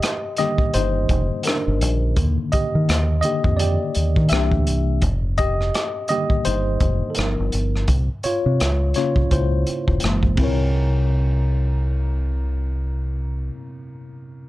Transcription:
Already playing: G4 D#5
0.02 cross-stick, closed hi-hat
0.36 D3 D#3 G3 A#3 G4 D#5, cross-stick, closed hi-hat
0.58 kick
0.74 G1 D#4 C5, closed hi-hat
1.09 F1, kick, closed hi-hat
1.43 D4 A#4, closed hi-hat
1.47 cross-stick
1.68 G1
1.81 A#1, closed hi-hat
2.16 D#2 D3 D#3 A#3, kick, closed hi-hat
2.52 G4 D#5, muted fingered electric bass stroke, kick, closed hi-hat
2.75 D#3
2.89 D#2, cross-stick, closed hi-hat
3.21 D3 D#3 A#3 G4 D#5, closed hi-hat
3.44 F2, kick
3.57 G4 D5, closed hi-hat
3.95 D#2, closed hi-hat
4.16 D#3, kick
4.29 C2 E3 A#3 D4 E5, closed hi-hat
4.33 G4, cross-stick
4.52 D2, kick
4.67 C2, closed hi-hat
5.02 F1, kick, closed hi-hat
5.38 G4 D#5, kick, closed hi-hat
5.61 cross-stick
5.74 cross-stick, closed hi-hat
6.08 D3 D#3 G3 A#3 G4 D#5, closed hi-hat
6.30 kick
6.45 G1 D#4 C5, closed hi-hat
6.80 F1, kick, closed hi-hat
7.10 A4
7.15 G1 F3 B3 D#4 A#4, closed hi-hat
7.19 cross-stick
7.40 G1
7.52 G1, closed hi-hat
7.76 cross-stick
7.88 C2, kick, closed hi-hat
8.23 F4 C#5, muted fingered electric bass stroke, closed hi-hat
8.46 C3
8.60 C#2, cross-stick, closed hi-hat
8.94 C#3 A#3 C#4 F4 C#5, cross-stick, closed hi-hat
9.16 C2, kick
9.31 C#2 E4 C5, kick, closed hi-hat
9.67 closed hi-hat
9.88 E1, kick
10.00 F#1 E3 G#3, closed hi-hat
10.04 A#3, cross-stick
10.23 kick
10.36 C2 C3 C4 E4, kick, ride
10.42 A#4 C#5

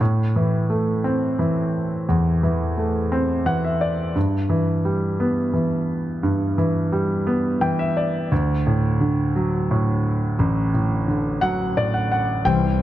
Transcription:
0.01 A2
0.36 E3
0.70 A3
1.04 C4
1.39 E3
2.09 E2
2.43 E3
2.77 A3
3.12 C4
3.46 E3 F#5
3.65 E5
3.81 D5
4.15 G2
4.50 E3
4.85 G3
5.20 B3
5.54 E3
6.23 G2
6.58 E3
6.92 G3
7.27 B3
7.61 E3 G5
7.79 E5
7.97 D5
8.32 D2
8.67 A2
9.01 D3
9.36 F#3
9.71 A2
10.39 A1
10.74 A2
11.08 D3
11.41 F#3 F#5
11.77 A2 D5
11.94 F#5
12.12 F#5
12.45 C2 C3 E3 G3 C4 E4 C5 G5
12.63 G3 C4 E4 C5

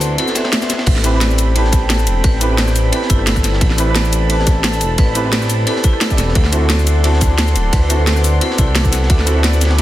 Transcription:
Already playing: D2 C4 E4 F#4 A4 B4 D5 F#5 A5 C6
0.01 open hi-hat, ride, cabasa
0.16 C4 E4 F#4 A4, closed hi-hat, ride
0.21 A4
0.28 snare, cabasa
0.35 E5, snare, closed hi-hat, ride, cabasa
0.45 cross-stick, snare, ride
0.52 snare, closed hi-hat, ride
0.62 snare, ride, cabasa
0.70 snare, closed hi-hat, ride, cabasa
0.78 snare, ride
0.86 A1 C4 A4 G5 B5, kick, closed hi-hat, ride, ride bell, crash
0.96 snare
1.03 C4 E4 G4 B4, cross-stick, closed hi-hat, ride, ride bell, cabasa
1.11 C4 E4 G4
1.16 B4
1.21 D5, snare, closed hi-hat, ride, ride bell
1.31 cabasa
1.38 closed hi-hat, ride, ride bell, cabasa
1.53 C4 E4 G4 A5, closed hi-hat, ride, ride bell
1.58 B4
1.64 snare
1.72 kick, snare, closed hi-hat, ride, ride bell, cabasa
1.90 A4, snare, closed hi-hat, ride, ride bell
1.99 ride, cabasa
2.07 E1, closed hi-hat, ride, ride bell, cabasa
2.24 A1 B4, kick, closed hi-hat, ride, ride bell
2.40 C4 E4 G4 B4, cross-stick, closed hi-hat, ride, ride bell, cabasa
2.48 A1 C4 E4 G4
2.53 B4
2.58 D5, snare, closed hi-hat, ride, ride bell
2.68 cross-stick, snare, cabasa
2.76 open hi-hat, ride, ride bell, cabasa
2.90 C4 E4 G4 A4, closed hi-hat, ride, ride bell
2.95 B4
3.02 snare
3.10 G1 E4, kick, closed hi-hat, ride, ride bell, cabasa
3.19 cross-stick
3.27 A4, snare, closed hi-hat, ride, ride bell
3.36 kick, ride, cabasa
3.44 A4, snare, closed hi-hat, ride, ride bell, cabasa
3.53 snare
3.61 A1 A4 A5, kick, closed hi-hat, ride, ride bell
3.70 snare
3.77 C4 E4 G4 B4, cross-stick, closed hi-hat, ride, ride bell, cabasa
3.85 C4 E4 G4
3.90 B4
3.95 D5, snare, closed hi-hat, ride, ride bell
4.05 cabasa
4.13 closed hi-hat, ride, ride bell, cabasa
4.27 C4 E4 G4 A5, closed hi-hat, ride, ride bell
4.32 B4
4.39 snare
4.47 kick, snare, closed hi-hat, ride, ride bell, cabasa
4.64 A4, snare, closed hi-hat, ride, ride bell
4.73 ride, cabasa
4.80 E1, closed hi-hat, ride, ride bell, cabasa
4.98 A1 B4, kick, closed hi-hat, ride, ride bell
5.14 C4 E4 G4 B4, cross-stick, closed hi-hat, ride, ride bell, cabasa
5.22 A1 C4 E4 G4
5.27 B4
5.32 D5, snare, closed hi-hat, ride, ride bell
5.42 cross-stick, snare, cabasa
5.49 open hi-hat, ride, ride bell, cabasa
5.65 C4 E4 G4 A4, closed hi-hat, ride, ride bell
5.69 B4
5.76 snare
5.84 E4, kick, closed hi-hat, ride, ride bell, cabasa
5.93 cross-stick
6.01 A4, snare, closed hi-hat, ride, ride bell
6.09 C4 E4 G4 D5, kick, ride, cabasa
6.18 E1 A4, snare, closed hi-hat, ride, ride bell, cabasa
6.28 snare
6.35 D2 A4 D5 F#5 C6, kick, closed hi-hat, ride, ride bell
6.45 snare
6.51 C4 E4 F#4 A4, cross-stick, closed hi-hat, ride, ride bell, cabasa
6.59 C4 E4 F#4
6.64 A4
6.69 D5, snare, closed hi-hat, ride, ride bell
6.79 cabasa
6.87 closed hi-hat, ride, ride bell, cabasa
7.02 C4 E4 F#4 A5, closed hi-hat, ride, ride bell
7.07 A4
7.13 snare
7.21 kick, snare, closed hi-hat, ride, ride bell, cabasa
7.38 A4, snare, closed hi-hat, ride, ride bell
7.48 ride, cabasa
7.55 D1, closed hi-hat, ride, ride bell, cabasa
7.73 D2 B4, kick, closed hi-hat, ride, ride bell
7.89 C4 E4 F#4 A4, cross-stick, closed hi-hat, ride, ride bell, cabasa
7.96 D2 C4 E4 F#4
8.01 A4
8.07 D5, snare, closed hi-hat, ride, ride bell
8.16 cross-stick, snare, cabasa
8.24 open hi-hat, ride, ride bell, cabasa
8.39 C4 E4 F#4 A4, closed hi-hat, ride, ride bell
8.44 A4
8.50 snare
8.58 C2 E4, kick, closed hi-hat, ride, ride bell, cabasa
8.68 cross-stick
8.75 A4, snare, closed hi-hat, ride, ride bell
8.85 kick, ride, cabasa
8.93 A4, snare, closed hi-hat, ride, ride bell, cabasa
9.03 snare
9.10 D2 A4 B5, kick, closed hi-hat, ride, ride bell
9.19 snare
9.26 C4 E4 F#4 A4, cross-stick, closed hi-hat, ride, ride bell, cabasa
9.34 C4 E4 F#4
9.39 A4
9.43 D5, snare, closed hi-hat, ride, ride bell
9.53 cabasa
9.61 snare, closed hi-hat, ride, ride bell, cabasa
9.65 snare, ride
9.70 snare, ride
9.76 C4 E4 A5, closed hi-hat, ride, ride bell

